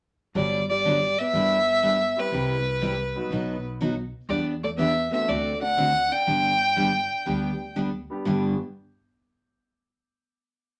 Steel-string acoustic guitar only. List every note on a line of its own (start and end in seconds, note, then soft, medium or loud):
0.35 0.58 D3 medium
0.35 0.58 F#3 medium
0.35 0.58 B3 medium
0.35 0.59 D4 medium
0.35 0.59 G4 medium
0.85 0.97 D3 medium
0.85 0.97 F#3 medium
0.85 0.97 B3 medium
0.85 0.97 D4 medium
0.85 0.98 G4 medium
1.34 1.57 G3 medium
1.34 1.57 D4 medium
1.34 1.57 E4 medium
1.34 1.58 B4 medium
1.83 1.95 G3 medium
1.83 1.95 D4 medium
1.83 1.95 E4 medium
1.83 1.96 B4 medium
2.32 2.56 C3 medium
2.32 2.56 G3 soft
2.32 2.56 C4 medium
2.32 2.56 E4 medium
2.32 2.56 G4 medium
2.81 2.94 C3 medium
2.81 2.94 G3 medium
2.81 2.94 C4 medium
2.81 2.94 E4 medium
2.81 2.95 G4 medium
3.32 3.55 B2 medium
3.32 3.55 F#3 medium
3.32 3.55 B3 medium
3.32 3.55 D#4 medium
3.32 3.55 F#4 medium
3.81 3.93 B2 medium
3.81 3.93 F#3 medium
3.81 3.93 B3 medium
3.81 3.93 D#4 medium
3.81 3.93 F#4 medium
4.29 4.53 E3 soft
4.29 4.53 B3 medium
4.29 4.53 D4 medium
4.29 4.53 G4 medium
4.78 4.91 E3 medium
4.78 4.91 B3 medium
4.78 4.92 D4 medium
4.78 4.92 G4 medium
5.28 5.52 D3 soft
5.28 5.52 A3 medium
5.28 5.52 C4 medium
5.28 5.52 F#4 medium
5.28 5.52 A4 medium
5.77 5.90 D3 medium
5.77 5.90 A3 medium
5.77 5.90 C4 medium
5.77 5.91 F#4 medium
5.77 5.91 A4 medium
6.26 6.50 D3 medium
6.26 6.51 G3 medium
6.26 6.51 B3 medium
6.26 6.51 D4 medium
6.26 6.51 G4 medium
6.76 6.89 D3 medium
6.76 6.89 G3 medium
6.76 6.89 B3 medium
6.76 6.90 D4 medium
6.76 6.90 G4 medium
7.26 7.50 D3 medium
7.26 7.50 G3 medium
7.26 7.50 B3 medium
7.26 7.50 D4 medium
7.26 7.50 G4 medium
7.76 7.89 D3 medium
7.76 7.89 G3 medium
7.76 7.89 B3 medium
7.76 7.89 D4 medium
7.76 7.89 G4 medium
8.25 8.53 G2 medium
8.25 8.53 D3 medium
8.25 8.53 G3 medium
8.25 8.54 B3 medium
8.25 8.54 D4 medium
8.25 8.54 G4 medium